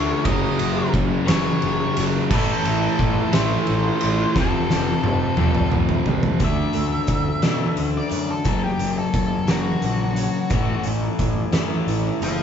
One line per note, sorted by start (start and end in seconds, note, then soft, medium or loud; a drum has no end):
0.00 0.12 D2 medium
0.00 0.24 D3 medium
0.00 0.25 D3 medium
0.00 0.24 A3 medium
0.00 0.23 D4 medium
0.00 0.24 D4 loud
0.00 0.25 C#5 loud
0.24 0.46 F#1 medium
0.24 1.26 F#2 medium
0.24 0.58 F#2 medium
0.24 0.59 C#3 loud
0.24 1.25 C#3 loud
0.24 0.59 F#3 loud
0.24 1.24 F#3 loud
0.24 0.90 D#5 loud
0.24 kick loud
0.24 ride loud
0.59 0.81 F#1 medium
0.59 0.92 F#2 medium
0.59 0.93 C#3 medium
0.59 0.93 F#3 loud
0.59 ride medium
0.93 1.14 F#1 medium
0.93 1.26 F#2 medium
0.93 1.27 C#3 medium
0.93 1.27 F#3 loud
0.93 kick medium
0.93 ride medium
1.25 1.50 F#1 medium
1.25 1.96 F#2 loud
1.25 2.29 F#2 medium
1.25 2.28 C#3 medium
1.25 1.96 C#3 loud
1.25 2.28 F#3 medium
1.25 1.97 F#3 loud
1.25 2.01 C#5 loud
1.25 snare loud
1.25 ride loud
1.62 1.84 F#1 medium
1.62 ride medium
1.97 2.18 F#1 medium
1.97 2.29 F#2 medium
1.97 2.29 C#3 medium
1.97 2.30 F#3 medium
1.97 ride medium
2.29 2.51 A1 loud
2.29 3.31 A2 loud
2.29 2.64 A2 loud
2.29 3.31 E3 loud
2.29 2.64 E3 loud
2.29 2.65 A3 loud
2.29 3.32 A3 loud
2.29 3.35 A4 loud
2.29 kick loud
2.29 crash loud
2.65 2.86 A1 medium
2.65 2.98 A2 medium
2.65 2.99 E3 medium
2.65 3.00 A3 loud
2.65 ride medium
2.99 3.20 A1 medium
2.99 3.32 A2 medium
2.99 3.33 E3 medium
2.99 3.34 A3 medium
2.99 kick medium
2.99 ride medium
3.33 3.55 A1 medium
3.33 4.01 A2 loud
3.33 4.35 A2 medium
3.33 4.34 E3 medium
3.33 4.02 E3 loud
3.33 6.42 A3 medium
3.33 4.03 A3 loud
3.33 4.33 C5 loud
3.33 snare loud
3.33 ride loud
3.67 3.90 A1 medium
3.67 ride medium
4.01 4.24 A1 medium
4.01 4.34 A2 medium
4.01 4.35 E3 medium
4.01 6.90 A3 loud
4.01 ride medium
4.34 4.57 F1 loud
4.34 5.36 F2 medium
4.34 4.69 F2 loud
4.34 5.37 C3 loud
4.34 4.70 C3 loud
4.34 4.70 F3 loud
4.34 5.36 F3 loud
4.34 kick loud
4.34 snare medium
4.40 5.71 A4 medium
4.70 4.92 F1 medium
4.70 5.02 F2 medium
4.70 5.03 C3 medium
4.70 5.04 F3 medium
4.70 snare medium
5.04 5.25 F1 medium
5.04 5.37 F2 medium
5.04 5.38 C3 medium
5.04 5.39 F3 loud
5.04 high tom medium
5.37 5.59 F1 medium
5.37 6.05 F2 medium
5.37 6.40 F2 medium
5.37 6.39 C3 medium
5.37 6.06 C3 loud
5.37 6.39 F3 medium
5.37 6.07 F3 loud
5.37 mid tom medium
5.55 mid tom medium
5.72 5.93 F1 medium
5.72 mid tom medium
5.89 floor tom medium
6.06 6.27 C2 medium
6.06 6.39 F2 medium
6.06 6.40 C3 medium
6.06 6.40 F3 loud
6.06 floor tom loud
6.23 floor tom medium
6.40 6.63 D2 loud
6.40 7.08 D3 medium
6.40 7.41 D3 medium
6.40 7.42 A3 medium
6.40 7.41 D4 loud
6.40 kick loud
6.40 closed hi-hat medium
6.44 7.93 E5 medium
6.73 6.98 D2 medium
6.73 7.42 A3 medium
6.73 closed hi-hat medium
7.07 7.31 D2 medium
7.07 8.44 D3 medium
7.07 kick medium
7.07 closed hi-hat medium
7.42 7.65 B2 medium
7.42 8.45 D3 medium
7.42 8.46 A3 medium
7.42 8.45 A3 medium
7.42 8.44 D4 medium
7.42 snare loud
7.42 closed hi-hat medium
7.77 8.00 D2 medium
7.77 8.46 F#4 medium
7.77 closed hi-hat medium
7.98 8.30 D5 medium
8.09 8.34 F#2 medium
8.09 8.45 D4 medium
8.09 closed hi-hat medium
8.31 8.63 A4 medium
8.44 8.68 F#1 medium
8.44 9.46 F#2 medium
8.44 9.47 C#3 medium
8.44 9.14 F#3 medium
8.44 9.46 F#3 loud
8.44 kick loud
8.44 closed hi-hat medium
8.64 8.97 G4 medium
8.79 9.03 F#1 medium
8.79 9.48 A#3 medium
8.79 closed hi-hat medium
8.99 9.48 A4 medium
9.14 9.36 F#1 medium
9.14 10.52 F#3 medium
9.14 kick medium
9.14 closed hi-hat medium
9.47 9.71 F#1 medium
9.47 10.50 F#2 medium
9.47 10.49 C#3 medium
9.47 10.49 F#3 medium
9.47 10.52 A#3 medium
9.47 10.83 F#4 loud
9.47 snare loud
9.47 closed hi-hat medium
9.82 10.27 A#1 medium
9.82 10.52 F#4 medium
9.82 closed hi-hat medium
10.16 10.52 C#4 medium
10.16 closed hi-hat medium
10.50 10.73 A1 medium
10.50 11.51 A2 medium
10.50 12.22 A2 medium
10.50 11.52 E3 medium
10.50 11.52 A3 medium
10.50 kick loud
10.50 closed hi-hat medium
10.83 11.07 A1 medium
10.83 11.54 A3 medium
10.83 closed hi-hat medium
11.19 11.41 A1 medium
11.19 12.43 E3 medium
11.19 kick medium
11.19 closed hi-hat medium
11.52 11.76 F#2 medium
11.52 12.43 A2 medium
11.52 12.43 E3 medium
11.52 12.43 A3 medium
11.52 snare loud
11.52 closed hi-hat medium
11.87 12.10 A1 medium
11.87 12.43 E4 medium
11.87 closed hi-hat medium
12.22 12.43 F#1 medium
12.22 12.43 C4 medium
12.22 12.43 C5 medium
12.22 12.43 A5 loud
12.22 closed hi-hat medium